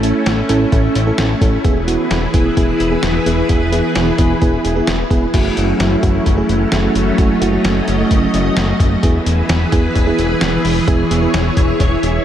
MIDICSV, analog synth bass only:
0, 0, Header, 1, 2, 480
1, 0, Start_track
1, 0, Tempo, 461538
1, 1712, Time_signature, 4, 2, 24, 8
1, 12736, End_track
2, 0, Start_track
2, 0, Title_t, "Analog synth bass"
2, 0, Program_c, 0, 38
2, 0, Note_on_c, 0, 33, 105
2, 128, Note_off_c, 0, 33, 0
2, 272, Note_on_c, 0, 33, 101
2, 440, Note_off_c, 0, 33, 0
2, 511, Note_on_c, 0, 33, 100
2, 679, Note_off_c, 0, 33, 0
2, 752, Note_on_c, 0, 33, 107
2, 920, Note_off_c, 0, 33, 0
2, 991, Note_on_c, 0, 33, 100
2, 1159, Note_off_c, 0, 33, 0
2, 1231, Note_on_c, 0, 33, 99
2, 1399, Note_off_c, 0, 33, 0
2, 1470, Note_on_c, 0, 33, 94
2, 1638, Note_off_c, 0, 33, 0
2, 1711, Note_on_c, 0, 28, 94
2, 2047, Note_off_c, 0, 28, 0
2, 2191, Note_on_c, 0, 28, 103
2, 2359, Note_off_c, 0, 28, 0
2, 2432, Note_on_c, 0, 28, 99
2, 2600, Note_off_c, 0, 28, 0
2, 2673, Note_on_c, 0, 28, 97
2, 2840, Note_off_c, 0, 28, 0
2, 2912, Note_on_c, 0, 28, 102
2, 3080, Note_off_c, 0, 28, 0
2, 3152, Note_on_c, 0, 28, 99
2, 3320, Note_off_c, 0, 28, 0
2, 3392, Note_on_c, 0, 28, 89
2, 3560, Note_off_c, 0, 28, 0
2, 3631, Note_on_c, 0, 28, 114
2, 3967, Note_off_c, 0, 28, 0
2, 4113, Note_on_c, 0, 28, 95
2, 4280, Note_off_c, 0, 28, 0
2, 4352, Note_on_c, 0, 28, 98
2, 4520, Note_off_c, 0, 28, 0
2, 4593, Note_on_c, 0, 28, 107
2, 4760, Note_off_c, 0, 28, 0
2, 4831, Note_on_c, 0, 28, 104
2, 4999, Note_off_c, 0, 28, 0
2, 5072, Note_on_c, 0, 28, 100
2, 5240, Note_off_c, 0, 28, 0
2, 5309, Note_on_c, 0, 28, 108
2, 5478, Note_off_c, 0, 28, 0
2, 5551, Note_on_c, 0, 30, 109
2, 5719, Note_off_c, 0, 30, 0
2, 5792, Note_on_c, 0, 30, 106
2, 5960, Note_off_c, 0, 30, 0
2, 6031, Note_on_c, 0, 30, 101
2, 6199, Note_off_c, 0, 30, 0
2, 6272, Note_on_c, 0, 30, 102
2, 6440, Note_off_c, 0, 30, 0
2, 6512, Note_on_c, 0, 30, 98
2, 6680, Note_off_c, 0, 30, 0
2, 6751, Note_on_c, 0, 30, 99
2, 6919, Note_off_c, 0, 30, 0
2, 6990, Note_on_c, 0, 30, 99
2, 7159, Note_off_c, 0, 30, 0
2, 7230, Note_on_c, 0, 30, 93
2, 7399, Note_off_c, 0, 30, 0
2, 7470, Note_on_c, 0, 30, 100
2, 7638, Note_off_c, 0, 30, 0
2, 7711, Note_on_c, 0, 30, 95
2, 7879, Note_off_c, 0, 30, 0
2, 7950, Note_on_c, 0, 30, 98
2, 8119, Note_off_c, 0, 30, 0
2, 8191, Note_on_c, 0, 30, 106
2, 8359, Note_off_c, 0, 30, 0
2, 8431, Note_on_c, 0, 30, 101
2, 8600, Note_off_c, 0, 30, 0
2, 8671, Note_on_c, 0, 30, 102
2, 8839, Note_off_c, 0, 30, 0
2, 8912, Note_on_c, 0, 30, 111
2, 9080, Note_off_c, 0, 30, 0
2, 9149, Note_on_c, 0, 30, 98
2, 9318, Note_off_c, 0, 30, 0
2, 9391, Note_on_c, 0, 28, 106
2, 9559, Note_off_c, 0, 28, 0
2, 9631, Note_on_c, 0, 28, 104
2, 9799, Note_off_c, 0, 28, 0
2, 9871, Note_on_c, 0, 28, 103
2, 10039, Note_off_c, 0, 28, 0
2, 10112, Note_on_c, 0, 28, 100
2, 10280, Note_off_c, 0, 28, 0
2, 10352, Note_on_c, 0, 28, 102
2, 10520, Note_off_c, 0, 28, 0
2, 10592, Note_on_c, 0, 28, 99
2, 10760, Note_off_c, 0, 28, 0
2, 10832, Note_on_c, 0, 28, 108
2, 11000, Note_off_c, 0, 28, 0
2, 11071, Note_on_c, 0, 28, 96
2, 11239, Note_off_c, 0, 28, 0
2, 11311, Note_on_c, 0, 28, 107
2, 11479, Note_off_c, 0, 28, 0
2, 11551, Note_on_c, 0, 28, 97
2, 11720, Note_off_c, 0, 28, 0
2, 11792, Note_on_c, 0, 28, 104
2, 11960, Note_off_c, 0, 28, 0
2, 12031, Note_on_c, 0, 28, 104
2, 12199, Note_off_c, 0, 28, 0
2, 12271, Note_on_c, 0, 28, 103
2, 12440, Note_off_c, 0, 28, 0
2, 12512, Note_on_c, 0, 28, 98
2, 12680, Note_off_c, 0, 28, 0
2, 12736, End_track
0, 0, End_of_file